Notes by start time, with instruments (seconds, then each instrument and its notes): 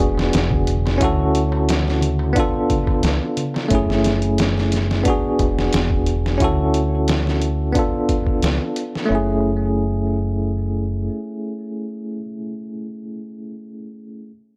Already playing: tine electric piano B3 D4 F#4 G#4
0.00 fingered electric bass E1, kick, closed hi-hat
0.18 snare, darbuka tek
0.33 fingered electric bass E1, snare, closed hi-hat, darbuka tek
0.51 kick, darbuka tek, darbuka dum
0.67 closed hi-hat
0.86 snare, darbuka tek
0.98 fingered electric bass D2, tine electric piano C#4 E4, kick, closed hi-hat, darbuka tek
1.02 tine electric piano F#4 A4
1.19 darbuka tek
1.35 closed hi-hat
1.52 darbuka tek
1.69 snare, closed hi-hat, darbuka tek
1.86 snare, darbuka tek
2.01 closed hi-hat, darbuka dum
2.19 darbuka tek
2.33 tine electric piano B3 D4, kick, closed hi-hat, darbuka tek
2.37 tine electric piano F4 A4
2.54 darbuka tek
2.69 kick, closed hi-hat, darbuka dum
2.87 kick, darbuka tek
3.03 fingered electric bass C#2, snare, closed hi-hat, darbuka tek
3.21 darbuka tek
3.37 closed hi-hat, darbuka dum
3.54 snare, darbuka tek
3.69 fingered electric bass F#1, tine electric piano A3 C#4, kick, closed hi-hat
3.73 tine electric piano E4 G#4
3.90 snare
4.04 snare, closed hi-hat
4.22 closed hi-hat
4.38 snare, closed hi-hat
4.58 snare
4.72 snare, closed hi-hat
4.91 snare
5.03 tine electric piano B3 D4, kick, closed hi-hat
5.08 tine electric piano F#4 G#4
5.39 fingered electric bass E1, kick, closed hi-hat
5.59 snare
5.73 fingered electric bass E1, snare, closed hi-hat
5.91 kick
6.06 closed hi-hat
6.26 snare
6.38 fingered electric bass D2, tine electric piano C#4 E4, kick, closed hi-hat
6.42 tine electric piano F#4 A4
6.74 closed hi-hat
7.08 snare, closed hi-hat
7.27 snare
7.42 closed hi-hat
7.72 tine electric piano B3 D4, kick, closed hi-hat
7.77 tine electric piano F4 A4
8.09 kick, closed hi-hat
8.27 kick
8.42 fingered electric bass C#2, snare, closed hi-hat
8.76 closed hi-hat
8.95 snare
9.06 tine electric piano A3 C#4
9.10 fingered electric bass F#1, tine electric piano E4
9.15 tine electric piano G#4